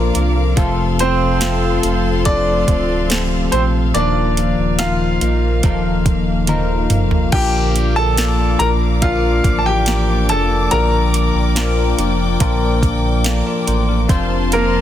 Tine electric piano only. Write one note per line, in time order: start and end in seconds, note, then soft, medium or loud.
0.00 0.57 F3 medium
0.00 0.59 A#3 medium
0.00 0.59 D4 medium
0.00 0.58 F4 medium
0.00 0.58 A4 medium
0.00 0.54 A#4 medium
0.00 0.59 C5 medium
0.57 1.80 C3 medium
0.57 1.37 F3 medium
0.57 1.37 A3 medium
0.57 1.38 C4 medium
0.57 1.38 F4 medium
0.57 1.38 A4 loud
1.42 2.22 F3 medium
1.42 2.22 A3 medium
1.42 2.22 C4 medium
1.42 2.22 F4 medium
1.42 2.23 A4 medium
2.25 3.06 F3 medium
2.25 3.06 A3 medium
2.25 3.06 C4 medium
2.25 3.07 F4 medium
2.25 3.07 C5 medium
3.10 3.91 F3 medium
3.10 3.91 A3 medium
3.10 3.91 C4 medium
3.10 3.91 F4 medium
3.10 3.91 G4 medium
3.95 5.18 A#2 medium
3.95 4.76 D#3 medium
3.95 4.75 F3 medium
3.95 4.75 A#3 medium
3.95 4.76 F4 medium
3.95 4.76 A#4 medium
4.79 5.60 F3 medium
4.79 5.60 A#3 medium
4.79 5.60 D#4 medium
4.79 5.60 F4 medium
4.79 5.60 A#4 medium
5.64 6.44 F3 medium
5.64 6.44 A#3 medium
5.64 6.45 D#4 medium
5.64 6.45 F4 medium
5.64 6.45 A4 medium
6.48 7.29 F3 medium
6.48 7.29 A#3 medium
6.48 7.29 D#4 medium
6.48 7.29 F4 medium
6.48 7.29 A#4 medium
7.33 8.13 F3 medium
7.33 8.13 A#3 medium
7.33 8.14 D4 medium
7.33 8.14 F4 medium
7.33 8.14 A#4 medium
8.17 8.98 F3 medium
8.17 8.98 A#3 medium
8.17 8.98 D4 medium
8.17 8.98 F4 medium
8.17 8.99 D5 medium
9.01 9.82 F3 medium
9.01 9.82 A#3 medium
9.01 9.83 D4 medium
9.01 9.83 F4 medium
9.01 9.83 A#4 medium
9.87 10.67 F3 medium
9.87 10.67 A#3 medium
9.87 10.67 D4 medium
9.87 10.68 F4 medium
9.87 10.68 D5 medium
10.71 11.52 F3 medium
10.71 11.52 A#3 medium
10.71 11.52 D4 medium
10.71 11.52 F4 medium
10.71 11.52 A#4 medium
11.56 12.36 F3 medium
11.56 12.36 A#3 medium
11.56 12.36 D4 medium
11.56 12.37 F4 medium
11.56 12.37 A#4 medium
12.40 13.20 F3 medium
12.40 13.21 A#3 medium
12.40 13.21 D4 medium
12.40 13.21 F4 medium
12.40 13.21 A#4 loud
13.25 13.45 A4 medium
13.25 13.45 F5 medium
13.46 13.67 F4 medium
13.46 13.66 D5 medium
13.68 13.87 C5 medium
13.89 14.29 D4 medium
13.89 14.29 A#4 medium
14.08 14.81 C3 medium
14.08 14.81 F3 medium
14.08 14.81 C4 medium
14.08 14.81 F4 medium
14.08 14.81 C5 medium